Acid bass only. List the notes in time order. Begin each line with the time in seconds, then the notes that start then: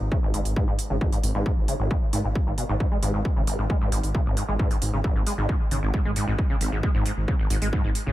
0.12 C#3
0.23 G#1
0.34 G#2
0.56 G#2
0.68 G#2
0.90 C#3
1.01 G#1
1.12 G#2
1.35 G#2
1.46 G#2
1.68 C#3
1.80 G#1
1.91 G#2
2.13 G#2
2.24 G#2
2.47 G#2
2.58 B2
2.69 G#2
2.80 G#2
2.92 G#3
3.03 G#2
3.14 G#2
3.36 C#3
3.47 G#1
3.59 G#2
3.70 G#3
3.81 G#2
3.92 G#2
4.15 C#3
4.26 G#1
4.37 G#2
4.48 G#3
4.59 G#2
4.71 G#2
4.93 C#3
5.04 G#1
5.16 G#2
5.27 G#3
5.38 G#2
5.49 G#2
5.71 C#3
5.83 G#1
5.94 G#2
6.05 G#3
6.16 G#2
6.28 G#2
6.50 C#3
6.61 G#1
6.72 G#2
6.83 G#3
6.95 G#2
7.06 G#2
7.28 C#3
7.39 G#1
7.50 G#2
7.62 G#3
7.73 G#2
7.84 G#2
8.06 C#3